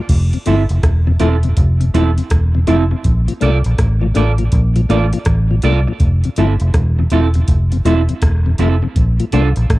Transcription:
0.09 fingered electric bass F1, kick, closed hi-hat, crash
0.33 tonewheel organ F2 C3, closed hi-hat
0.46 fingered electric bass G1, tonewheel organ F3 A3 E4, clean electric guitar C4 E4 A4, closed hi-hat
0.69 fingered electric bass F1, closed hi-hat
0.83 fingered electric bass E1, kick, cross-stick, closed hi-hat
1.07 tonewheel organ F2 C3, muted clean electric guitar stroke
1.20 fingered electric bass E1, tonewheel organ F3 A3 E4, clean electric guitar C4 E4 A4, closed hi-hat
1.43 tonewheel organ F2 C3, closed hi-hat
1.57 fingered electric bass F1, kick, closed hi-hat
1.81 tonewheel organ F2 C3, closed hi-hat
1.94 fingered electric bass E1, tonewheel organ F3 A3 E4, clean electric guitar C4 E4 A4, closed hi-hat
2.18 tonewheel organ F2 C3, closed hi-hat
2.30 fingered electric bass E1, kick, cross-stick, closed hi-hat
2.55 tonewheel organ F2 C3
2.67 fingered electric bass F1, tonewheel organ F3 A3 E4, clean electric guitar C4 E4 A4, closed hi-hat
2.91 tonewheel organ F2 C3, muted clean electric guitar stroke
3.04 fingered electric bass A#1, kick, closed hi-hat
3.28 tonewheel organ A#2 F3, closed hi-hat
3.40 fingered electric bass C2, tonewheel organ A3 A#3 D4, clean electric guitar F4 A4 D5, closed hi-hat
3.64 fingered electric bass A#1, closed hi-hat
3.78 fingered electric bass A1, kick, cross-stick, closed hi-hat
4.01 tonewheel organ A#2 F3, muted clean electric guitar stroke
4.14 fingered electric bass A1, tonewheel organ A3 A#3 D4, clean electric guitar F4 A4 D5, closed hi-hat
4.38 tonewheel organ A#2 F3, closed hi-hat
4.52 fingered electric bass A#1, kick, closed hi-hat
4.76 tonewheel organ A#2 F3, closed hi-hat
4.89 fingered electric bass A1, tonewheel organ A3 A#3 D4, clean electric guitar F4 A4 D5, closed hi-hat
5.13 tonewheel organ A#2 F3, closed hi-hat
5.25 fingered electric bass A1, kick, cross-stick, closed hi-hat
5.51 tonewheel organ A#2 F3
5.62 fingered electric bass C2, tonewheel organ A3 A#3 D4, clean electric guitar F4 A4 D5, closed hi-hat
5.88 tonewheel organ A#2 F3, muted clean electric guitar stroke
6.00 fingered electric bass F1, kick, closed hi-hat
6.24 tonewheel organ F2 C3, closed hi-hat
6.36 fingered electric bass G1, tonewheel organ F3 A3 E4, clean electric guitar C4 E4 A4, closed hi-hat
6.60 fingered electric bass F1, closed hi-hat
6.74 fingered electric bass E1, kick, cross-stick, closed hi-hat
6.99 tonewheel organ F2 C3, muted clean electric guitar stroke
7.10 fingered electric bass E1, tonewheel organ F3 A3 E4, clean electric guitar C4 E4 A4, closed hi-hat
7.34 tonewheel organ F2 C3, closed hi-hat
7.48 fingered electric bass F1, kick, closed hi-hat
7.72 tonewheel organ F2 C3, closed hi-hat
7.85 fingered electric bass E1, tonewheel organ F3 A3 E4, clean electric guitar C4 E4 A4, closed hi-hat
8.09 tonewheel organ F2 C3, closed hi-hat
8.22 fingered electric bass E1, kick, cross-stick, closed hi-hat
8.46 tonewheel organ F2 C3
8.58 fingered electric bass F1, tonewheel organ F3 A3 E4, clean electric guitar C4 E4 A4, closed hi-hat
8.82 tonewheel organ F2 C3, muted clean electric guitar stroke
8.96 fingered electric bass A#1, kick, closed hi-hat
9.20 tonewheel organ A#2 F3, closed hi-hat
9.32 fingered electric bass C2, tonewheel organ A3 A#3 D4, clean electric guitar D4 F4 A4, closed hi-hat
9.56 fingered electric bass A#1, closed hi-hat
9.70 fingered electric bass A1, kick, cross-stick, closed hi-hat

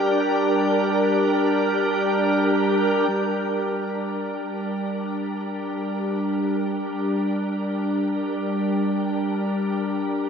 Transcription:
Already playing: synth drone G3 D4, ambient pad D4 G4 A#4, synth texture G4 G5
3.08 synth drone G3 D4

